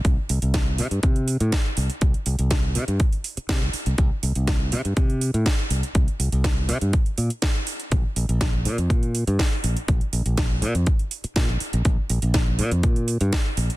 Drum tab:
HH |x-oxx-oxxxoxx-ox|xxoxx-oxxxoxx-ox|x-oxx-oxxxoxx-ox|xxoxx-oxxxoxx-ox|
SD |----o-------o---|----o-------o---|----o-------o---|----o-------o---|
BD |o---o---o---o---|o---o---o---o---|o---o---o---o---|o---o---o---o---|

HH |x-oxx-oxxxoxx-ox|xxoxx-oxxxoxx-ox|x-oxx-oxxxoxx-ox|
SD |----o-------o---|----o-------o---|----o-------o---|
BD |o---o---o---o---|o---o---o---o---|o---o---o---o---|